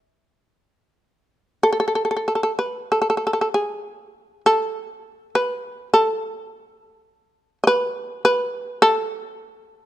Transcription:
0.00 2.24 E5 medium
1.63 1.71 A4 medium
1.73 1.79 A4 soft
1.80 1.86 A4 medium
1.88 1.94 A4 soft
1.95 2.03 A4 soft
2.05 2.10 A4 soft
2.11 2.15 A4 soft
2.17 2.26 A4 soft
2.28 2.34 A4 soft
2.35 2.42 A4 soft
2.43 2.51 A4 soft
2.59 2.89 B4 medium
2.92 2.99 A4 medium
3.02 3.08 A4 soft
3.10 3.16 A4 soft
3.17 3.24 A4 soft
3.27 3.32 A4 soft
3.33 3.40 A4 soft
3.41 3.48 A4 soft
3.54 4.41 G#4 medium
4.46 5.29 A4 medium
5.35 5.89 B4 medium
5.94 7.58 A4 medium
7.64 8.22 B4 medium
7.64 7.67 D#5 medium
8.25 8.80 B4 medium
8.82 9.86 A4 medium

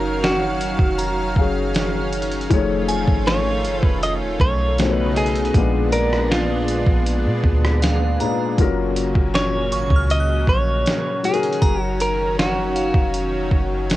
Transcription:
0.00 0.76 F#1 loud
0.00 2.47 D#3 medium
0.00 1.32 F#3 medium
0.00 2.47 F#3 medium
0.00 1.33 C#4 medium
0.00 4.74 C#4 medium
0.00 0.24 A#4 medium
0.00 1.34 A#4 medium
0.00 1.34 F5 medium
0.00 2.47 F5 medium
0.24 1.71 F#4 medium
0.24 snare loud
0.61 closed hi-hat medium
0.79 1.34 F1 loud
0.79 kick loud
0.98 2.84 A#5 medium
0.98 closed hi-hat medium
1.36 2.46 F#1 loud
1.36 2.51 F#3 medium
1.36 2.51 C#4 medium
1.36 2.50 G#4 medium
1.36 2.51 F5 medium
1.36 kick medium
1.74 snare loud
1.74 closed hi-hat medium
2.13 closed hi-hat medium
2.22 closed hi-hat medium
2.32 closed hi-hat soft
2.41 closed hi-hat soft
2.50 3.05 F1 loud
2.50 4.76 D#3 medium
2.50 4.74 F3 medium
2.50 5.51 A3 medium
2.50 4.75 A3 medium
2.50 4.75 D#4 medium
2.50 4.76 F4 medium
2.50 4.75 G#4 medium
2.50 4.76 C#5 medium
2.50 kick loud
2.50 closed hi-hat medium
2.88 4.98 G#5 medium
2.88 closed hi-hat medium
3.08 3.66 G#1 loud
3.08 kick medium
3.27 3.84 C#5 loud
3.27 snare loud
3.65 3.82 F#1 loud
3.65 closed hi-hat medium
3.83 4.23 F1 loud
3.83 4.03 B4 loud
3.83 kick loud
4.03 4.13 D#5 loud
4.03 closed hi-hat medium
4.22 4.39 D#1 loud
4.40 5.50 B1 loud
4.40 4.94 C#5 loud
4.40 kick medium
4.78 5.55 B2 medium
4.78 5.54 C#3 medium
4.78 5.55 A3 medium
4.78 5.54 B3 medium
4.78 5.54 D#4 medium
4.78 5.55 D#4 medium
4.78 4.86 C5 medium
4.78 snare loud
4.78 closed hi-hat medium
4.87 5.59 C#5 medium
4.94 5.13 B4 loud
5.16 5.92 G#4 medium
5.16 closed hi-hat medium
5.26 closed hi-hat medium
5.35 closed hi-hat soft
5.45 closed hi-hat soft
5.54 6.83 A#1 loud
5.54 8.16 A#2 medium
5.54 11.20 A#2 medium
5.54 8.55 G#3 medium
5.54 8.16 G#3 medium
5.54 8.55 B3 medium
5.54 8.18 B3 medium
5.54 8.55 D4 medium
5.54 8.17 D4 medium
5.54 kick loud
5.54 closed hi-hat medium
5.92 6.32 A#4 medium
5.92 8.02 D5 medium
5.92 closed hi-hat medium
6.13 cross-stick medium
6.31 7.79 F4 medium
6.31 snare loud
6.68 closed hi-hat medium
6.87 7.27 A#1 loud
6.87 kick loud
7.06 closed hi-hat medium
7.26 7.43 A#2 loud
7.44 8.17 D2 loud
7.44 kick medium
7.65 cross-stick loud
7.82 8.92 F5 medium
7.82 snare loud
7.82 closed hi-hat medium
8.20 8.58 A#2 medium
8.20 8.59 G#3 medium
8.20 8.59 D4 medium
8.20 8.59 B4 medium
8.20 8.92 A#5 medium
8.20 closed hi-hat medium
8.57 9.13 F#1 loud
8.57 11.22 C#3 medium
8.57 11.20 F#3 medium
8.57 11.21 F#3 medium
8.57 11.20 C#4 medium
8.57 11.21 F4 medium
8.57 11.21 A#4 medium
8.57 kick loud
8.57 closed hi-hat medium
8.96 closed hi-hat medium
9.15 9.74 F#1 loud
9.15 kick medium
9.35 10.11 C#5 loud
9.35 snare loud
9.72 9.90 G#1 loud
9.72 11.58 C#6 medium
9.72 closed hi-hat medium
9.90 10.45 C#2 loud
9.90 kick loud
9.96 11.79 F6 medium
10.10 10.46 D#5 loud
10.10 closed hi-hat medium
10.20 12.01 F#6 medium
10.47 10.84 A#1 loud
10.47 11.27 C#5 loud
10.47 kick medium
10.86 snare loud
10.86 closed hi-hat medium
11.23 13.96 D#3 medium
11.23 13.96 F#3 medium
11.23 13.96 C#4 medium
11.23 13.96 F#4 medium
11.23 11.82 G#4 medium
11.23 11.32 G#4 medium
11.23 closed hi-hat medium
11.33 13.96 A#4 medium
11.33 closed hi-hat medium
11.43 closed hi-hat soft
11.53 closed hi-hat soft
11.62 12.91 F#1 loud
11.62 13.72 A#5 medium
11.62 kick loud
11.62 closed hi-hat medium
11.82 12.01 F#4 medium
12.00 12.39 A#4 loud
12.00 closed hi-hat medium
12.39 13.86 F#4 medium
12.39 snare loud
12.76 13.96 F5 medium
12.76 closed hi-hat medium
12.94 13.49 F1 loud
12.94 kick loud
13.14 closed hi-hat medium
13.51 13.96 F#1 loud
13.51 kick medium
13.90 snare loud
13.90 closed hi-hat medium

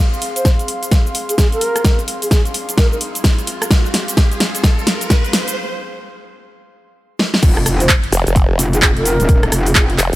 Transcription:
0.00 5.57 C4 medium
0.00 5.57 G#4 medium
0.00 5.57 F5 medium
0.00 5.57 C6 medium
0.00 riser medium
0.14 shaker soft
0.22 open hi-hat medium
0.36 0.48 C5 medium
0.36 closed hi-hat medium
0.36 shaker medium
0.45 kick loud
0.45 snare soft
0.45 closed hi-hat medium
0.45 shaker medium
0.59 closed hi-hat soft
0.59 shaker soft
0.68 open hi-hat loud
0.83 closed hi-hat medium
0.83 shaker medium
0.91 kick loud
0.91 snare medium
0.91 closed hi-hat medium
0.91 shaker medium
1.07 shaker soft
1.15 open hi-hat loud
1.29 1.35 G#4 medium
1.29 closed hi-hat medium
1.29 shaker medium
1.38 1.47 G#4 medium
1.38 kick loud
1.38 snare medium
1.38 closed hi-hat medium
1.38 shaker medium
1.52 1.99 A#4 loud
1.52 closed hi-hat soft
1.52 shaker soft
1.61 open hi-hat loud
1.76 cross-stick medium
1.76 closed hi-hat medium
1.76 shaker medium
1.85 kick loud
1.85 snare medium
1.85 closed hi-hat medium
1.85 shaker medium
1.99 closed hi-hat soft
1.99 shaker soft
2.08 open hi-hat loud
2.22 2.28 G#4 medium
2.22 open hi-hat medium
2.22 shaker medium
2.31 2.40 G#4 medium
2.31 kick loud
2.31 snare medium
2.31 closed hi-hat medium
2.31 shaker medium
2.45 closed hi-hat soft
2.45 shaker soft
2.54 open hi-hat loud
2.69 closed hi-hat medium
2.69 shaker medium
2.78 2.87 A#4 medium
2.78 kick loud
2.78 snare medium
2.78 closed hi-hat medium
2.78 shaker soft
2.92 2.98 A#4 medium
2.92 shaker soft
3.01 open hi-hat loud
3.15 closed hi-hat medium
3.15 shaker medium
3.24 kick loud
3.24 snare medium
3.24 open hi-hat medium
3.24 shaker medium
3.38 closed hi-hat soft
3.38 shaker soft
3.47 open hi-hat loud
3.62 cross-stick medium
3.62 closed hi-hat medium
3.62 shaker medium
3.71 kick loud
3.71 snare medium
3.71 closed hi-hat medium
3.71 shaker medium
3.86 shaker soft
3.94 snare medium
3.94 open hi-hat loud
4.08 closed hi-hat medium
4.08 shaker medium
4.17 kick loud
4.17 snare medium
4.17 closed hi-hat medium
4.17 shaker medium
4.32 closed hi-hat soft
4.32 shaker soft
4.40 snare medium
4.40 open hi-hat loud
4.55 closed hi-hat medium
4.55 shaker medium
4.64 kick loud
4.64 snare medium
4.64 closed hi-hat medium
4.64 shaker medium
4.79 shaker soft
4.87 snare medium
4.87 open hi-hat loud
5.01 closed hi-hat medium
5.01 shaker medium
5.10 kick loud
5.10 snare medium
5.10 closed hi-hat medium
5.10 shaker medium
5.24 closed hi-hat soft
5.24 shaker soft
5.33 snare medium
5.33 open hi-hat loud
5.48 closed hi-hat soft
5.48 shaker medium
7.19 snare medium
7.34 snare medium
7.43 7.88 F1 loud
7.43 kick loud
7.43 closed hi-hat medium
7.43 crash loud
7.43 impact medium
7.43 shaker soft
7.57 cross-stick medium
7.66 cross-stick medium
7.66 open hi-hat loud
7.66 shaker medium
7.80 7.92 C5 medium
7.80 open hi-hat medium
7.80 shaker soft
7.89 kick loud
7.89 clap loud
7.89 closed hi-hat medium
7.89 shaker soft
8.04 closed hi-hat soft
8.12 8.25 F1 loud
8.12 open hi-hat loud
8.12 shaker medium
8.27 8.58 F1 loud
8.27 closed hi-hat medium
8.27 shaker soft
8.36 kick loud
8.36 closed hi-hat medium
8.36 shaker soft
8.59 8.94 F1 loud
8.59 open hi-hat loud
8.59 shaker medium
8.73 8.79 G#4 medium
8.73 closed hi-hat medium
8.73 shaker soft
8.82 8.91 G#4 medium
8.82 kick loud
8.82 clap loud
8.82 closed hi-hat medium
8.82 shaker soft
8.97 9.18 F1 medium
8.97 9.43 A#4 loud
8.97 closed hi-hat soft
9.05 open hi-hat loud
9.05 shaker medium
9.20 9.51 D#1 loud
9.20 closed hi-hat medium
9.20 shaker soft
9.29 kick loud
9.29 closed hi-hat medium
9.29 shaker soft
9.43 cross-stick medium
9.43 closed hi-hat soft
9.52 9.97 F1 loud
9.52 cross-stick medium
9.52 open hi-hat loud
9.52 shaker medium
9.66 9.72 G#4 medium
9.66 open hi-hat medium
9.66 shaker soft
9.75 9.85 G#4 medium
9.75 kick loud
9.75 clap loud
9.75 closed hi-hat medium
9.75 shaker soft
9.90 closed hi-hat soft
9.98 10.11 F1 loud
9.98 clap medium
9.98 open hi-hat loud
9.98 shaker medium

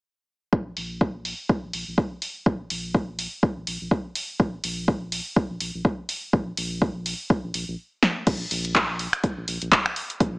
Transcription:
0.53 0.71 A#1 loud
0.53 kick loud
0.77 1.33 A#1 loud
0.77 open hi-hat loud
1.01 kick loud
1.25 open hi-hat medium
1.49 kick loud
1.63 1.71 A#1 medium
1.73 1.83 A#1 loud
1.73 open hi-hat loud
1.87 1.95 A#1 medium
1.98 kick loud
2.22 open hi-hat medium
2.46 2.65 A#1 loud
2.46 kick loud
2.70 3.26 A#1 loud
2.70 open hi-hat loud
2.94 kick loud
3.19 open hi-hat medium
3.43 kick loud
3.57 3.64 A#1 medium
3.67 3.77 A#1 medium
3.67 open hi-hat loud
3.81 3.88 A#1 medium
3.91 kick loud
4.15 open hi-hat loud
4.40 4.58 A#1 loud
4.40 kick loud
4.64 5.20 A#1 loud
4.64 open hi-hat loud
4.88 kick loud
5.12 open hi-hat loud
5.36 kick loud
5.50 5.58 A#1 loud
5.60 5.71 A#1 medium
5.60 open hi-hat loud
5.74 5.82 A#1 medium
5.85 kick loud
6.09 open hi-hat medium
6.33 6.52 A#1 loud
6.33 kick loud
6.57 7.13 A#1 loud
6.57 open hi-hat loud
6.82 kick loud
7.06 open hi-hat medium
7.30 kick loud
7.44 7.51 A#1 medium
7.54 7.64 A#1 medium
7.54 open hi-hat loud
7.68 7.76 A#1 medium
8.03 snare medium
8.27 8.45 A#1 loud
8.27 kick loud
8.27 closed hi-hat medium
8.27 crash medium
8.51 9.07 A#1 loud
8.51 open hi-hat loud
8.65 closed hi-hat medium
8.75 kick loud
8.75 clap loud
8.99 open hi-hat medium
9.13 finger snap medium
9.13 closed hi-hat medium
9.24 kick loud
9.24 closed hi-hat medium
9.37 9.45 A#1 medium
9.48 9.58 A#1 medium
9.48 open hi-hat loud
9.62 9.69 A#1 medium
9.62 closed hi-hat medium
9.72 kick loud
9.72 clap loud
9.72 closed hi-hat medium
9.86 finger snap medium
9.96 open hi-hat medium
10.10 closed hi-hat medium
10.20 10.39 A#1 loud
10.20 kick loud
10.20 closed hi-hat medium

